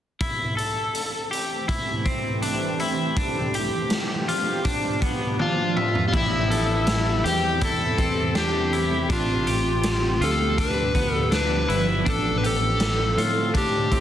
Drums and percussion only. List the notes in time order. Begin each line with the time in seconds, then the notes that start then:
0.20 kick, closed hi-hat
0.58 closed hi-hat
0.95 closed hi-hat
1.33 closed hi-hat
1.69 kick, closed hi-hat
2.06 kick, closed hi-hat
2.42 closed hi-hat
2.79 closed hi-hat
3.16 kick, closed hi-hat
3.54 closed hi-hat
3.90 snare, closed hi-hat
4.28 closed hi-hat
4.65 kick, closed hi-hat
5.02 kick, closed hi-hat
5.39 high tom
5.77 mid tom
5.95 floor tom
6.14 kick, crash
6.51 closed hi-hat
6.87 snare, closed hi-hat
7.25 closed hi-hat
7.61 kick, closed hi-hat
7.98 kick, closed hi-hat
8.35 snare, closed hi-hat
8.73 closed hi-hat
9.10 kick, closed hi-hat
9.47 closed hi-hat
9.83 snare, closed hi-hat
10.22 closed hi-hat
10.58 kick, closed hi-hat
10.95 kick, closed hi-hat
11.32 snare, closed hi-hat
11.69 closed hi-hat
12.06 kick, closed hi-hat
12.44 closed hi-hat
12.80 snare, closed hi-hat
13.18 closed hi-hat
13.54 kick, closed hi-hat
13.91 kick, closed hi-hat